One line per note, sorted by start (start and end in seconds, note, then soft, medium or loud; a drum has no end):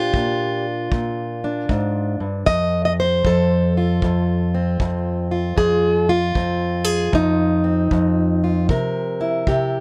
0.00 0.14 A#2 medium
0.00 0.15 D4 soft
0.00 2.20 F4 loud
0.00 0.66 G4 medium
0.14 0.91 A#2 medium
0.14 1.43 D4 soft
0.14 kick medium
0.92 1.69 A#2 medium
0.92 kick medium
1.44 2.44 D4 soft
1.69 2.20 G#2 medium
1.69 kick medium
2.20 2.47 G2 medium
2.46 3.25 F2 medium
2.46 2.84 D#5 loud
2.46 kick medium
2.85 2.92 D#5 medium
3.00 3.75 C5 medium
3.25 4.03 F2 medium
3.25 4.53 A4 medium
3.25 kick medium
3.77 5.30 F4 soft
4.02 4.79 F2 medium
4.02 kick medium
4.54 5.57 C4 soft
4.80 5.55 F2 medium
4.80 kick medium
5.31 6.08 F4 soft
5.56 6.35 F2 medium
5.56 6.08 G#4 loud
5.56 kick medium
6.09 7.64 F4 medium
6.35 7.11 F2 medium
6.35 6.85 C4 soft
6.35 kick medium
6.85 7.12 G#4 medium
7.13 7.90 F2 medium
7.13 8.70 D#4 medium
7.13 kick medium
7.64 9.47 C4 soft
7.91 8.69 F2 medium
7.91 kick medium
8.44 8.70 F4 soft
8.69 9.47 C3 medium
8.69 9.80 A#4 medium
8.69 kick medium
9.21 9.80 E4 soft
9.47 9.80 C3 medium
9.47 9.80 G4 medium
9.47 kick medium